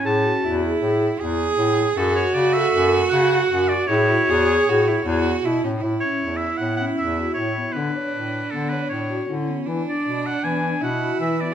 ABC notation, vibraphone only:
X:1
M:5/4
L:1/8
Q:1/4=156
K:A
V:1 name="Vibraphone"
G F F G G2 E2 E2 | G F F z A2 F2 F2 | G F F G G2 E2 E2 | E C2 z B, C2 F E B, |
D c2 z B, c2 F E B, | E D2 z B, D2 F z B, |]